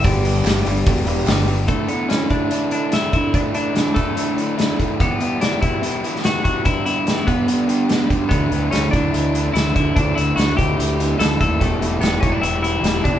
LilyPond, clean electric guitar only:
\new Staff \with { instrumentName = "Clean electric guitar" } { \time 4/4 \key g \lydian \tempo 4 = 145 d''2. r4 | a8 b8 cis'8 d'4 d'8 e'8 e'8 | d'8 d'4 a2 r8 | b4 d'8 e'4. fis'8 fis'8 |
e'8 e'4 b2 r8 | b4 cis'8 d'4. e'8 e'8 | d'8 e'8 fis'8 g'4. a'8 a'8 | a4 b8 cis'16 d'16 e'8 e'4 d'8 | }